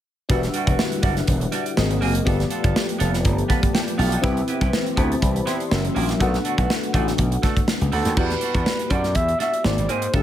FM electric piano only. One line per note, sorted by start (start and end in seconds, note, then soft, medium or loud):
0.29 1.74 D4 medium
0.29 1.74 F#4 medium
0.29 1.74 G4 medium
0.29 1.75 B4 medium
0.29 1.75 E5 medium
1.77 2.26 C4 medium
1.77 2.27 F#4 medium
1.77 2.27 G#4 medium
1.77 2.27 A#4 medium
1.77 2.27 D#5 medium
2.25 4.19 B3 medium
2.25 4.19 F4 medium
2.25 4.19 G4 medium
2.25 4.19 A4 medium
2.25 4.20 D5 medium
3.50 3.73 A5 medium
3.74 3.97 G5 medium
3.98 4.21 F5 medium
4.21 5.67 C4 medium
4.21 5.67 E4 medium
4.21 5.68 G4 medium
4.21 4.96 B4 medium
4.21 4.96 E5 medium
4.97 5.21 C5 medium
4.97 5.21 A5 medium
5.22 5.46 D5 medium
5.22 5.45 B5 medium
5.46 5.71 E5 medium
5.46 5.93 C6 medium
5.71 6.20 C#4 medium
5.71 6.19 F#4 medium
5.71 6.21 G4 medium
5.71 6.21 A#4 medium
5.71 6.21 E5 medium
6.19 8.12 D4 medium
6.19 8.13 F#4 medium
6.19 8.13 A4 medium
6.19 8.14 B4 medium
6.19 8.14 F#5 medium
8.17 9.61 B3 medium
8.17 9.62 E4 medium
8.17 9.62 F#4 medium
8.17 9.62 G4 medium
8.17 9.63 D5 medium
9.64 10.14 A#3 medium
9.64 10.14 D#4 medium
9.64 10.14 F#4 medium
9.64 10.14 G#4 medium
9.64 10.14 C5 medium
10.13 10.23 A3 medium
10.13 10.23 D4 medium
10.13 10.23 F4 medium
10.13 10.23 G4 medium
10.13 10.21 A4 medium